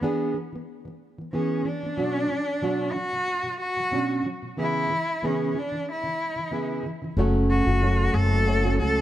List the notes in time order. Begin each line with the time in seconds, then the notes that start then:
Already playing: B3
0.01 E3 B3 D4 G#4
0.34 E3 B3
0.53 E3 B3
0.85 E3 B3
1.18 E3 B3
1.33 E3 B3 C#4 G#4
1.65 E3 B3 D4
1.83 E3 B3
1.97 B2 F#3 D4 F#4
2.30 B2 F#3
2.62 B2 F#3 D4 F#4
2.93 B2 F#3 F#4
3.13 B2 F#3
3.44 B2 F#3
3.60 F#4
3.77 B2 F#3
3.91 B2 F#3 C#4 D4 F#4
4.23 B2 F#3
4.43 B2 F#3
4.57 C#3 E3 B3 E4 G#4
4.89 C#3 E3
5.22 C#3 E3 B3 E4 G#4
5.27 C#4
5.54 C#3 E3
5.59 D4
5.72 C#3 E3
5.91 E4
6.04 C#3 E3
6.36 C#3 E3
6.51 C#3 E3 B3 E4 G#4
6.83 C#3 E3
7.02 C#3 E3
7.17 F#1 F#2 C#3 F#3 A3 C#4 F#4 C#5
7.50 F#4
7.67 F#1 F#3 A3 C#4 F#4
7.82 F#2 C#3 F#3 A3 C#4 F#4 C#5
8.14 F#1 A4
8.46 A3 C#4 F#4 C#5
8.64 F#3 A3 C#4 F#4
8.79 C#2 F#3 A3 C#4 F#4 A4